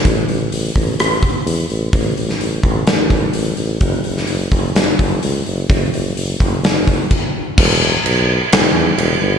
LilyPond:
<<
  \new Staff \with { instrumentName = "Tuba" } { \clef bass \time 4/4 \key a \mixolydian \tempo 4 = 127 a,,8 a,,8 a,,8 a,,8 a,,8 r8 e,8 a,,8 | a,,8 a,,8 a,,8 a,,8 a,,4 a,,8 a,,8 | fis,,8 fis,,8 fis,,8 fis,,8 fis,,8 fis,,8 cis,8 fis,,8 | fis,,8 fis,,8 fis,,8 fis,,8 fis,,4 r4 |
e,,4 b,,4 e,,8 e,8 e,,8 g,,8 | }
  \new DrumStaff \with { instrumentName = "Drums" } \drummode { \time 4/4 <hho bd>8 hho8 hho8 <hho bd>8 <hho ss>8 <hho bd>8 hho8 hho8 | <hho bd>8 hho16 sn16 hho8 <hho bd>8 <hho sn>8 <hho bd>8 hho8 hho8 | <hho bd>8 hho16 sn16 hho8 <hho bd>8 <hho sn>8 <hho bd>8 hho8 hho8 | <hho bd>8 hho8 hho8 <hho bd>8 <hho sn>8 <hho bd>8 <cymc bd>4 |
<cymc bd>4 cymc4 <cymc sn>4 cymc4 | }
>>